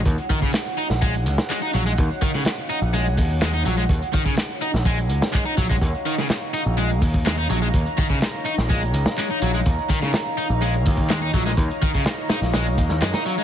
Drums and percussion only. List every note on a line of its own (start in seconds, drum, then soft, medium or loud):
0.05 kick loud
0.05 closed hi-hat medium
0.05 shaker soft
0.18 closed hi-hat soft
0.18 shaker soft
0.30 kick loud
0.30 closed hi-hat medium
0.30 open hi-hat medium
0.30 shaker medium
0.42 kick medium
0.42 shaker soft
0.53 snare loud
0.53 clap loud
0.53 closed hi-hat medium
0.53 shaker soft
0.66 shaker soft
0.78 closed hi-hat medium
0.78 open hi-hat medium
0.78 shaker medium
0.90 snare soft
0.90 shaker soft
1.02 kick loud
1.02 closed hi-hat medium
1.02 shaker soft
1.14 closed hi-hat soft
1.14 open hi-hat soft
1.14 shaker soft
1.26 closed hi-hat medium
1.26 open hi-hat medium
1.26 shaker medium
1.38 snare loud
1.38 shaker soft
1.50 clap loud
1.50 closed hi-hat medium
1.50 shaker soft
1.62 closed hi-hat soft
1.62 shaker soft
1.74 closed hi-hat medium
1.74 open hi-hat medium
1.74 shaker medium
1.86 closed hi-hat soft
1.86 shaker soft
1.98 kick loud
1.98 closed hi-hat medium
1.98 shaker soft
2.10 shaker soft
2.22 kick loud
2.22 closed hi-hat medium
2.22 open hi-hat medium
2.22 shaker medium
2.34 snare soft
2.34 shaker soft
2.45 snare loud
2.45 clap loud
2.45 closed hi-hat medium
2.45 shaker soft
2.58 shaker soft
2.69 closed hi-hat medium
2.69 open hi-hat medium
2.69 shaker medium
2.82 shaker soft
2.94 closed hi-hat medium
2.94 shaker soft
3.06 closed hi-hat soft
3.06 shaker soft
3.17 kick loud
3.17 open hi-hat medium
3.17 shaker medium
3.30 shaker soft
3.42 snare loud
3.42 clap loud
3.42 closed hi-hat medium
3.42 shaker soft
3.54 shaker soft
3.66 closed hi-hat medium
3.66 open hi-hat medium
3.66 shaker medium
3.78 closed hi-hat soft
3.78 shaker soft
3.89 kick loud
3.89 closed hi-hat medium
3.89 shaker soft
4.02 closed hi-hat soft
4.02 shaker soft
4.14 kick loud
4.14 closed hi-hat medium
4.14 open hi-hat medium
4.14 shaker medium
4.26 kick medium
4.26 shaker soft
4.38 snare loud
4.38 clap loud
4.38 closed hi-hat medium
4.38 shaker soft
4.50 shaker soft
4.62 closed hi-hat medium
4.62 open hi-hat medium
4.62 shaker medium
4.74 snare soft
4.74 shaker soft
4.85 kick loud
4.85 closed hi-hat medium
4.85 shaker soft
4.98 closed hi-hat soft
4.98 open hi-hat soft
4.98 shaker soft
5.10 closed hi-hat medium
5.10 open hi-hat medium
5.10 shaker medium
5.22 snare loud
5.22 shaker soft
5.34 kick loud
5.34 clap loud
5.34 closed hi-hat medium
5.34 shaker soft
5.46 shaker soft
5.58 kick medium
5.58 closed hi-hat medium
5.58 open hi-hat medium
5.58 shaker medium
5.70 kick loud
5.70 closed hi-hat medium
5.70 shaker soft
5.81 kick loud
5.81 closed hi-hat medium
5.81 shaker soft
5.94 shaker soft
6.06 closed hi-hat medium
6.06 open hi-hat medium
6.06 shaker medium
6.18 snare soft
6.18 shaker soft
6.30 snare loud
6.30 clap loud
6.30 closed hi-hat medium
6.30 shaker soft
6.42 shaker soft
6.54 closed hi-hat medium
6.54 open hi-hat medium
6.54 shaker medium
6.66 shaker soft
6.78 closed hi-hat medium
6.78 shaker soft
6.90 closed hi-hat soft
6.90 shaker soft
7.02 kick medium
7.02 open hi-hat medium
7.02 shaker medium
7.14 kick medium
7.14 shaker soft
7.26 snare loud
7.26 clap loud
7.26 closed hi-hat medium
7.26 shaker soft
7.38 shaker soft
7.50 closed hi-hat medium
7.50 open hi-hat medium
7.50 shaker medium
7.62 closed hi-hat soft
7.62 shaker soft
7.74 kick loud
7.74 closed hi-hat medium
7.74 shaker soft
7.86 closed hi-hat soft
7.86 shaker soft
7.98 kick loud
7.98 closed hi-hat medium
7.98 open hi-hat medium
7.98 shaker medium
8.10 kick medium
8.10 shaker soft
8.22 snare loud
8.22 clap loud
8.22 closed hi-hat medium
8.22 shaker soft
8.34 shaker soft
8.46 closed hi-hat medium
8.46 open hi-hat medium
8.46 shaker medium
8.58 snare soft
8.58 shaker soft
8.70 kick loud
8.70 closed hi-hat medium
8.70 shaker soft
8.82 closed hi-hat soft
8.82 open hi-hat soft
8.82 shaker soft
8.94 closed hi-hat medium
8.94 open hi-hat medium
8.94 shaker medium
9.06 snare loud
9.06 shaker soft
9.18 clap loud
9.18 closed hi-hat medium
9.18 shaker soft
9.30 closed hi-hat soft
9.30 shaker soft
9.42 closed hi-hat medium
9.42 open hi-hat medium
9.42 shaker medium
9.54 closed hi-hat soft
9.54 shaker soft
9.66 kick loud
9.66 closed hi-hat medium
9.66 shaker soft
9.78 shaker soft
9.89 kick medium
9.89 closed hi-hat medium
9.89 open hi-hat medium
9.89 shaker medium
10.02 snare soft
10.02 shaker soft
10.14 snare loud
10.14 clap loud
10.14 closed hi-hat medium
10.14 shaker soft
10.26 shaker soft
10.38 closed hi-hat medium
10.38 open hi-hat medium
10.38 shaker medium
10.50 shaker soft
10.62 closed hi-hat loud
10.62 shaker soft
10.74 closed hi-hat soft
10.74 shaker soft
10.86 kick loud
10.86 open hi-hat medium
10.86 shaker medium
10.97 kick medium
10.97 shaker soft
11.10 snare loud
11.10 clap loud
11.10 closed hi-hat medium
11.10 shaker soft
11.22 shaker soft
11.34 kick medium
11.34 closed hi-hat medium
11.34 open hi-hat medium
11.34 shaker medium
11.46 snare soft
11.46 shaker soft
11.57 kick loud
11.57 closed hi-hat medium
11.57 shaker soft
11.70 closed hi-hat soft
11.70 shaker soft
11.82 kick loud
11.82 closed hi-hat medium
11.82 open hi-hat medium
11.82 shaker medium
11.94 kick medium
11.94 shaker soft
12.06 snare loud
12.06 clap loud
12.06 closed hi-hat medium
12.06 shaker soft
12.18 shaker soft
12.29 snare loud
12.29 closed hi-hat medium
12.29 open hi-hat medium
12.29 shaker medium
12.42 snare soft
12.42 shaker soft
12.54 snare loud
12.54 closed hi-hat medium
12.54 shaker soft
12.66 open hi-hat medium
12.66 shaker soft
12.78 kick medium
12.78 closed hi-hat medium
12.78 open hi-hat medium
12.78 shaker medium
12.89 snare soft
12.89 shaker soft
13.02 snare loud
13.02 clap loud
13.02 closed hi-hat medium
13.02 shaker soft
13.13 snare loud
13.13 closed hi-hat medium
13.13 shaker soft
13.26 closed hi-hat medium
13.26 open hi-hat medium
13.26 shaker medium
13.38 closed hi-hat soft
13.38 shaker soft